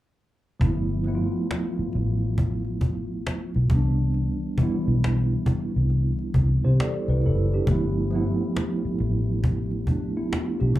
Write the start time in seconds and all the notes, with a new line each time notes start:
0.60 G1 F3 A3 B3, cajon bass
0.65 E4
1.03 F3 A3 B3, cajon slap
1.08 E4
1.15 F4
1.51 cajon slap
1.79 muted fingered electric bass stroke
1.93 A1, cajon slap
2.38 cajon bass
2.65 cajon slap
2.81 cajon bass
3.27 cajon slap
3.54 B1, cajon slap
3.70 C2 E3 G3 B3, cajon bass
3.74 D4
3.99 cajon slap
4.14 cajon slap
4.58 E3 G3, muted fingered electric bass stroke, cajon bass
4.62 B3 E4
4.88 B1
5.04 cajon slap
5.46 muted fingered electric bass stroke, cajon bass
5.76 C2
5.90 cajon slap
6.19 cajon slap
6.34 C2, cajon bass
6.64 C3 G4 C5
6.80 A4 D5, cajon slap
7.08 C2 E4 B4, cajon slap
7.22 F#1, cajon slap
7.26 E4 A4
7.53 D4 G4, cajon slap
7.67 G1 F3 A3 B3, cajon bass
7.72 E4
8.11 F3 A3 B3, cajon slap
8.16 E4
8.56 cajon slap
8.85 muted fingered electric bass stroke
8.99 A1, cajon slap
9.44 cajon bass
9.71 cajon slap
9.87 A3 D4, cajon bass
10.17 B3 E4
10.32 B3 F4, cajon slap
10.60 B1 D4 G4, cajon slap
10.74 E3 G3, cajon bass